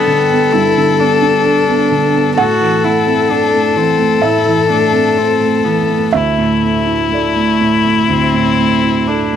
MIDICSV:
0, 0, Header, 1, 4, 480
1, 0, Start_track
1, 0, Key_signature, 1, "major"
1, 0, Tempo, 927357
1, 1238, Time_signature, 4, 2, 24, 8
1, 2683, Tempo, 972447
1, 4746, End_track
2, 0, Start_track
2, 0, Title_t, "Violin"
2, 0, Program_c, 0, 40
2, 0, Note_on_c, 0, 69, 72
2, 1218, Note_off_c, 0, 69, 0
2, 1233, Note_on_c, 0, 69, 70
2, 3164, Note_on_c, 0, 64, 59
2, 3172, Note_off_c, 0, 69, 0
2, 4746, Note_off_c, 0, 64, 0
2, 4746, End_track
3, 0, Start_track
3, 0, Title_t, "Cello"
3, 0, Program_c, 1, 42
3, 0, Note_on_c, 1, 59, 84
3, 271, Note_on_c, 1, 64, 86
3, 278, Note_off_c, 1, 59, 0
3, 518, Note_on_c, 1, 62, 69
3, 525, Note_off_c, 1, 64, 0
3, 1230, Note_off_c, 1, 62, 0
3, 1233, Note_on_c, 1, 66, 95
3, 1472, Note_on_c, 1, 64, 74
3, 1479, Note_off_c, 1, 66, 0
3, 1709, Note_on_c, 1, 62, 68
3, 1717, Note_off_c, 1, 64, 0
3, 1952, Note_on_c, 1, 60, 66
3, 1960, Note_off_c, 1, 62, 0
3, 2186, Note_on_c, 1, 64, 70
3, 2194, Note_off_c, 1, 60, 0
3, 2431, Note_off_c, 1, 64, 0
3, 2435, Note_on_c, 1, 62, 65
3, 2681, Note_on_c, 1, 60, 65
3, 2688, Note_off_c, 1, 62, 0
3, 2911, Note_on_c, 1, 59, 57
3, 2919, Note_off_c, 1, 60, 0
3, 3153, Note_off_c, 1, 59, 0
3, 3156, Note_on_c, 1, 57, 61
3, 3584, Note_off_c, 1, 57, 0
3, 3639, Note_on_c, 1, 57, 66
3, 4102, Note_off_c, 1, 57, 0
3, 4116, Note_on_c, 1, 60, 76
3, 4603, Note_on_c, 1, 62, 59
3, 4610, Note_off_c, 1, 60, 0
3, 4746, Note_off_c, 1, 62, 0
3, 4746, End_track
4, 0, Start_track
4, 0, Title_t, "Felt piano"
4, 0, Program_c, 2, 0
4, 0, Control_c, 2, 64, 127
4, 0, Note_on_c, 2, 43, 70
4, 0, Note_on_c, 2, 50, 54
4, 0, Note_on_c, 2, 59, 53
4, 0, Note_on_c, 2, 62, 52
4, 0, Note_on_c, 2, 69, 59
4, 0, Note_on_c, 2, 74, 107
4, 0, Note_on_c, 2, 79, 90
4, 37, Note_off_c, 2, 50, 0
4, 37, Note_on_c, 2, 50, 51
4, 113, Note_off_c, 2, 59, 0
4, 158, Note_on_c, 2, 59, 54
4, 230, Note_off_c, 2, 50, 0
4, 260, Note_off_c, 2, 43, 0
4, 278, Note_on_c, 2, 43, 68
4, 350, Note_off_c, 2, 59, 0
4, 399, Note_on_c, 2, 50, 49
4, 513, Note_on_c, 2, 59, 54
4, 591, Note_off_c, 2, 50, 0
4, 631, Note_off_c, 2, 62, 0
4, 631, Note_on_c, 2, 62, 51
4, 707, Note_off_c, 2, 59, 0
4, 751, Note_off_c, 2, 69, 0
4, 751, Note_on_c, 2, 69, 60
4, 826, Note_off_c, 2, 62, 0
4, 871, Note_on_c, 2, 59, 55
4, 946, Note_off_c, 2, 69, 0
4, 975, Note_off_c, 2, 79, 0
4, 991, Note_on_c, 2, 50, 52
4, 1066, Note_off_c, 2, 59, 0
4, 1110, Note_on_c, 2, 59, 51
4, 1187, Note_off_c, 2, 50, 0
4, 1216, Note_off_c, 2, 43, 0
4, 1229, Note_on_c, 2, 78, 115
4, 1231, Note_on_c, 2, 45, 65
4, 1234, Note_off_c, 2, 59, 0
4, 1247, Control_c, 2, 64, 0
4, 1252, Note_off_c, 2, 74, 0
4, 1343, Control_c, 2, 64, 127
4, 1352, Note_on_c, 2, 52, 49
4, 1470, Note_on_c, 2, 57, 56
4, 1545, Note_off_c, 2, 52, 0
4, 1588, Note_on_c, 2, 60, 47
4, 1663, Note_off_c, 2, 57, 0
4, 1707, Note_on_c, 2, 69, 58
4, 1782, Note_off_c, 2, 60, 0
4, 1825, Note_on_c, 2, 57, 51
4, 1902, Note_off_c, 2, 69, 0
4, 1945, Note_on_c, 2, 52, 49
4, 2021, Note_off_c, 2, 57, 0
4, 2061, Note_on_c, 2, 57, 46
4, 2142, Note_off_c, 2, 52, 0
4, 2169, Note_off_c, 2, 78, 0
4, 2170, Note_off_c, 2, 45, 0
4, 2181, Note_on_c, 2, 45, 62
4, 2182, Note_on_c, 2, 76, 76
4, 2261, Note_off_c, 2, 57, 0
4, 2310, Note_on_c, 2, 52, 42
4, 2431, Note_on_c, 2, 57, 48
4, 2508, Note_off_c, 2, 52, 0
4, 2552, Note_on_c, 2, 60, 46
4, 2631, Note_off_c, 2, 57, 0
4, 2674, Note_on_c, 2, 69, 51
4, 2751, Note_off_c, 2, 60, 0
4, 2796, Note_on_c, 2, 57, 43
4, 2869, Note_off_c, 2, 69, 0
4, 2914, Note_on_c, 2, 52, 46
4, 2990, Note_off_c, 2, 57, 0
4, 3037, Note_on_c, 2, 57, 40
4, 3109, Note_off_c, 2, 52, 0
4, 3136, Note_off_c, 2, 45, 0
4, 3136, Note_off_c, 2, 76, 0
4, 3148, Note_on_c, 2, 76, 86
4, 3155, Note_on_c, 2, 38, 56
4, 3159, Note_off_c, 2, 57, 0
4, 3171, Control_c, 2, 64, 0
4, 3262, Control_c, 2, 64, 127
4, 3275, Note_on_c, 2, 45, 42
4, 3397, Note_on_c, 2, 57, 46
4, 3471, Note_off_c, 2, 45, 0
4, 3513, Note_on_c, 2, 64, 40
4, 3593, Note_off_c, 2, 57, 0
4, 3617, Note_off_c, 2, 76, 0
4, 3638, Note_on_c, 2, 69, 48
4, 3649, Note_on_c, 2, 74, 51
4, 3711, Note_off_c, 2, 64, 0
4, 3759, Note_on_c, 2, 57, 41
4, 3833, Note_off_c, 2, 69, 0
4, 3881, Note_on_c, 2, 45, 45
4, 3953, Note_off_c, 2, 57, 0
4, 4000, Note_on_c, 2, 57, 45
4, 4074, Note_off_c, 2, 45, 0
4, 4101, Note_off_c, 2, 38, 0
4, 4120, Note_on_c, 2, 38, 51
4, 4194, Note_off_c, 2, 57, 0
4, 4241, Note_on_c, 2, 45, 39
4, 4364, Note_on_c, 2, 57, 43
4, 4435, Note_off_c, 2, 45, 0
4, 4485, Note_on_c, 2, 64, 42
4, 4556, Note_off_c, 2, 57, 0
4, 4608, Note_on_c, 2, 69, 51
4, 4676, Note_off_c, 2, 64, 0
4, 4728, Note_on_c, 2, 57, 41
4, 4746, Note_off_c, 2, 38, 0
4, 4746, Note_off_c, 2, 57, 0
4, 4746, Note_off_c, 2, 69, 0
4, 4746, Note_off_c, 2, 74, 0
4, 4746, End_track
0, 0, End_of_file